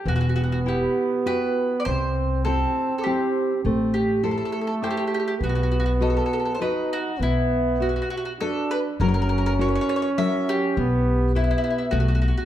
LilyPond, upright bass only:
\new Staff \with { instrumentName = "Upright bass" } { \clef bass \time 3/4 \key e \minor \tempo 4 = 101 e,,2 r4 | c,2 r4 | a,,2 r4 | b,,2 r4 |
b,,2 r4 | fis,,2 r4 | b,,2 b,,4 | }